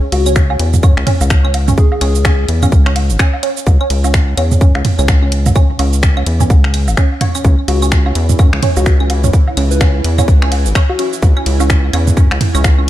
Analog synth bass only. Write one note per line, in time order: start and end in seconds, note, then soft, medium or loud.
0.12 0.57 C#2 loud
0.60 0.85 E2 medium
0.83 0.95 F#2 medium
0.97 1.05 C#2 medium
1.21 1.75 C#2 medium
2.01 2.46 C#2 loud
2.49 2.74 E2 medium
2.72 3.11 C#2 medium
3.10 3.18 G#1 medium
3.67 3.78 C#2 loud
3.90 4.35 C#2 loud
4.37 4.63 E2 medium
4.61 4.72 F#2 medium
4.75 4.83 C#2 medium
4.99 5.53 C#2 medium
5.79 6.24 C#2 loud
6.26 6.52 E2 medium
6.50 6.89 C#2 medium
6.88 6.96 G#1 medium
7.45 7.56 C#2 loud
7.68 8.12 C#2 loud
8.15 8.41 E2 medium
8.39 8.50 F#2 medium
8.53 8.61 C#2 medium
8.77 9.31 C#2 medium
9.57 10.01 C#2 loud
10.04 10.29 E2 medium
10.28 10.67 C#2 medium
10.66 10.73 G#1 loud
11.23 11.34 C#2 loud
11.46 11.90 C#2 loud
11.93 12.18 E2 medium
12.17 12.28 F#2 medium
12.31 12.39 C#2 medium
12.55 12.90 C#2 medium